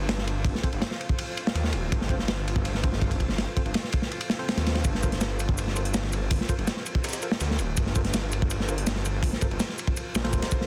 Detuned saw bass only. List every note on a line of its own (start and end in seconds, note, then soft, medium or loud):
0.00 0.54 G1 loud
0.73 0.81 G1 medium
1.55 1.75 D#2 medium
1.73 1.90 D1 loud
1.92 3.46 G1 loud
3.66 3.74 G1 medium
4.57 4.83 D#2 medium
4.85 6.39 G1 loud
6.58 6.67 G1 medium
7.41 7.60 D2 medium
7.59 7.75 D1 loud
7.77 9.31 G1 loud
9.51 9.59 G1 medium
10.15 10.35 A#1 loud
10.33 10.41 D1 medium